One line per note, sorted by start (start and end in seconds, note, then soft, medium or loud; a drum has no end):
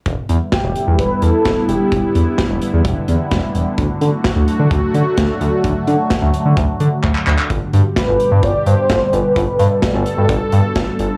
0.06 0.14 E1 loud
0.06 11.17 D3 medium
0.06 3.74 G3 medium
0.06 3.74 B3 medium
0.06 3.74 E4 medium
0.06 kick loud
0.06 closed hi-hat medium
0.29 0.38 E2 loud
0.29 closed hi-hat medium
0.52 0.96 G4 loud
0.52 kick loud
0.52 snare loud
0.52 closed hi-hat medium
0.64 0.72 E1 medium
0.76 closed hi-hat medium
0.87 0.96 E2 medium
0.99 1.07 E1 loud
0.99 1.24 B4 loud
0.99 kick loud
0.99 closed hi-hat medium
1.22 1.31 E2 loud
1.22 1.68 A4 loud
1.22 closed hi-hat medium
1.45 1.54 E1 loud
1.45 kick loud
1.45 snare loud
1.45 closed hi-hat medium
1.69 1.77 E1 medium
1.69 2.58 G4 medium
1.69 closed hi-hat medium
1.92 2.00 E1 loud
1.92 kick loud
1.92 closed hi-hat medium
2.15 2.24 E2 medium
2.15 closed hi-hat medium
2.38 kick loud
2.38 snare loud
2.38 closed hi-hat medium
2.50 2.58 E1 loud
2.62 closed hi-hat medium
2.73 2.82 E2 loud
2.85 2.93 E1 loud
2.85 kick loud
2.85 closed hi-hat medium
3.08 3.17 E2 medium
3.08 closed hi-hat medium
3.31 3.40 E1 loud
3.31 kick loud
3.31 snare loud
3.31 closed hi-hat medium
3.55 3.63 E1 loud
3.55 closed hi-hat medium
3.78 3.86 D2 loud
3.78 7.46 F#3 medium
3.78 7.46 A3 medium
3.78 7.46 F#4 medium
3.78 kick loud
3.78 closed hi-hat medium
4.01 4.10 D3 loud
4.01 closed hi-hat medium
4.24 kick loud
4.24 snare loud
4.24 closed hi-hat medium
4.36 4.45 D2 medium
4.48 closed hi-hat medium
4.59 4.68 D3 loud
4.71 4.79 D2 loud
4.71 kick loud
4.71 closed hi-hat medium
4.94 5.03 D3 loud
4.94 closed hi-hat medium
5.17 5.26 D2 medium
5.17 kick loud
5.17 snare loud
5.17 closed hi-hat medium
5.41 5.49 D2 loud
5.41 closed hi-hat medium
5.64 5.73 D2 loud
5.64 kick medium
5.64 closed hi-hat medium
5.87 5.96 D3 loud
5.87 closed hi-hat medium
6.10 kick loud
6.10 snare loud
6.10 closed hi-hat medium
6.22 6.31 D2 loud
6.34 closed hi-hat medium
6.45 6.54 D3 medium
6.57 6.65 D2 loud
6.57 kick loud
6.57 closed hi-hat medium
6.80 6.89 D3 loud
6.80 closed hi-hat medium
7.03 7.12 D2 medium
7.03 kick loud
7.03 clap medium
7.15 clap medium
7.27 7.35 D2 loud
7.27 clap medium
7.38 clap medium
7.50 7.59 G1 loud
7.50 11.17 B2 medium
7.50 11.17 G3 medium
7.50 9.34 G4 medium
7.50 kick loud
7.50 closed hi-hat medium
7.73 7.82 G2 loud
7.73 closed hi-hat medium
7.96 8.45 B4 loud
7.96 kick loud
7.96 snare loud
7.96 closed hi-hat medium
8.08 8.17 G1 loud
8.20 closed hi-hat medium
8.31 8.40 G2 medium
8.43 8.51 G1 loud
8.43 8.66 D5 loud
8.43 kick loud
8.43 closed hi-hat medium
8.66 8.75 G2 loud
8.66 9.15 C5 loud
8.66 closed hi-hat medium
8.89 8.98 G1 loud
8.89 kick loud
8.89 snare loud
8.89 closed hi-hat medium
9.13 9.21 G1 loud
9.13 10.06 B4 medium
9.13 closed hi-hat medium
9.36 9.45 G1 loud
9.36 11.17 A4 medium
9.36 kick loud
9.36 closed hi-hat medium
9.59 9.68 G2 loud
9.59 closed hi-hat medium
9.82 kick loud
9.82 snare loud
9.82 closed hi-hat medium
9.94 10.03 G1 loud
10.06 closed hi-hat medium
10.18 10.26 G2 loud
10.29 10.38 G1 loud
10.29 kick loud
10.29 closed hi-hat medium
10.52 10.61 G2 loud
10.52 closed hi-hat medium
10.76 10.84 G1 loud
10.76 kick loud
10.76 snare loud
10.76 closed hi-hat medium
10.99 11.07 G1 medium
10.99 closed hi-hat medium